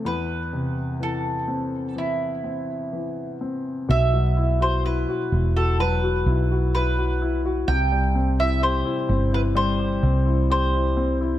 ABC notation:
X:1
M:4/4
L:1/16
Q:1/4=64
K:Bphr
V:1 name="Mandolin"
B4 A4 E6 z2 | e3 c B3 A B4 B3 z | g3 e c3 B c4 c3 z |]
V:2 name="Grand piano"
E,,2 C,2 E,2 C2 E,2 C2 E,2 C2 | B,, F, E F E F E F F, F E F E F E F | C, G, C E G E C E G, G C E G E C E |]
V:3 name="Fretless electric bass" clef=bass
z16 | B,,,4- B,,, z E,,,4 B,,,6 | C,,4- C,, z G,,,4 C,,6 |]